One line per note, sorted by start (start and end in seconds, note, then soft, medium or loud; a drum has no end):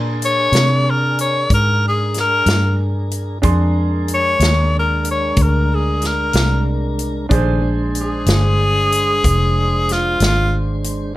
0.00 0.50 A#2 medium
0.00 3.39 D4 medium
0.00 3.38 G#4 medium
0.00 3.40 G#4 soft
0.00 3.39 A#4 medium
0.00 3.40 C6 medium
0.22 0.92 C#5 medium
0.22 closed hi-hat medium
0.52 1.47 C3 medium
0.52 snare medium
0.52 closed hi-hat medium
0.90 1.19 A#4 medium
1.19 1.51 C#5 medium
1.19 closed hi-hat soft
1.50 2.44 G#2 medium
1.50 1.83 A#4 medium
1.50 kick loud
1.50 closed hi-hat medium
1.88 2.17 G#4 medium
2.14 snare soft
2.14 closed hi-hat medium
2.21 2.80 A#4 medium
2.46 3.40 G2 medium
2.46 snare medium
2.46 closed hi-hat medium
3.11 closed hi-hat medium
3.42 4.38 F2 medium
3.42 7.27 G#3 medium
3.42 7.26 D4 medium
3.42 7.26 G#4 medium
3.42 7.27 A#4 medium
3.42 7.27 C6 medium
3.42 kick medium
3.42 closed hi-hat medium
4.08 closed hi-hat medium
4.14 4.74 C#5 medium
4.40 5.34 D#2 medium
4.40 snare medium
4.40 closed hi-hat medium
4.79 5.07 A#4 medium
5.05 closed hi-hat medium
5.11 5.44 C#5 medium
5.37 6.31 D2 medium
5.37 kick loud
5.37 closed hi-hat medium
5.42 5.76 A#4 medium
5.75 6.08 G#4 medium
6.02 snare soft
6.02 closed hi-hat medium
6.07 6.67 A#4 medium
6.33 7.28 C2 medium
6.33 snare loud
6.33 closed hi-hat medium
6.99 closed hi-hat medium
7.29 8.25 A#1 medium
7.29 7.62 D#3 medium
7.29 7.63 A3 medium
7.29 11.13 D4 medium
7.29 11.14 G#4 soft
7.29 7.61 C5 medium
7.29 11.15 C5 medium
7.29 kick loud
7.29 closed hi-hat medium
7.61 11.13 G#3 medium
7.61 11.13 D4 medium
7.61 11.14 C5 medium
7.95 closed hi-hat medium
8.01 9.94 G#4 medium
8.26 9.21 G1 medium
8.26 snare medium
8.26 closed hi-hat medium
8.92 closed hi-hat medium
9.24 10.18 F1 medium
9.24 kick loud
9.24 closed hi-hat medium
9.89 10.22 F4 medium
9.89 snare soft
9.89 closed hi-hat medium
10.20 11.14 G#1 medium
10.20 snare medium
10.20 closed hi-hat medium
10.26 10.55 F4 medium
10.84 closed hi-hat medium